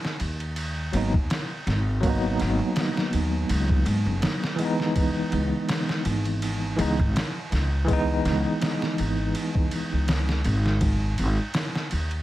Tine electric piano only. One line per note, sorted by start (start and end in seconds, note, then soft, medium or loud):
0.92 1.12 F#3 medium
0.92 1.12 A#3 medium
0.92 1.13 B3 medium
0.97 1.14 D#4 loud
2.00 4.54 F#3 loud
2.00 4.55 A#3 medium
2.07 4.57 B3 loud
2.07 4.58 D#4 loud
4.56 6.73 E3 medium
4.56 6.75 G#3 medium
4.62 6.76 B3 medium
4.62 6.78 D#4 loud
6.77 6.96 E3 medium
6.77 6.97 G#3 medium
6.77 6.98 B3 medium
6.81 6.99 D#4 medium
7.84 10.22 E3 loud
7.84 10.24 G#3 loud
7.90 10.25 B3 medium
7.90 10.26 D#4 loud